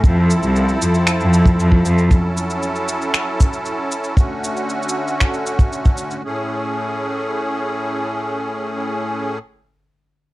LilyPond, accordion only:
<<
  \new Staff \with { instrumentName = "Accordion" } { \time 4/4 \key a \major \tempo 4 = 116 a'1~ | a'1 | fis'1 | <a, a cis' gis'>1~ |
<a, a cis' gis'>1 | }
  \new Staff \with { instrumentName = "Accordion" } { \time 4/4 \key a \major <f c' e'>1 | <fis cis' e'>1 | <d a>1 | r1 |
r1 | }
>>